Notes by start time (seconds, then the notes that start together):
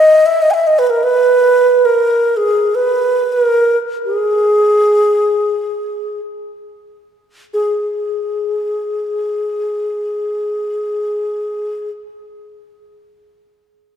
Already playing: D#5
0.26 E5
0.42 D#5
0.51 E5 G#5
0.67 D#5
0.79 B4
0.87 A#4 B4
1.03 B4
1.85 A#4
2.37 G#4
2.75 B4
3.32 A#4
4.06 G#4
7.53 G#4